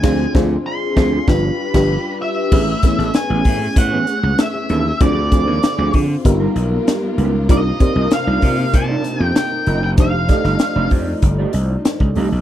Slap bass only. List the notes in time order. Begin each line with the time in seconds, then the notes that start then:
0.04 D2
0.35 D2
0.97 D2
1.28 G1
1.74 G1
2.52 A1
2.98 A1
3.30 A1
3.45 A2
3.76 A2
4.23 C#2
4.70 D#2
5.01 D2
5.47 D#2
5.78 D2
5.94 D3
6.25 G1
6.56 B1
7.18 C#2
7.49 C2
7.96 C2
8.27 C2
8.43 C3
8.74 C3
9.20 F2
9.67 F#1
9.98 F1
10.44 G1
10.76 F1
10.91 F2
11.23 G1
11.54 C2
12.00 C#2
12.16 C2
12.32 B1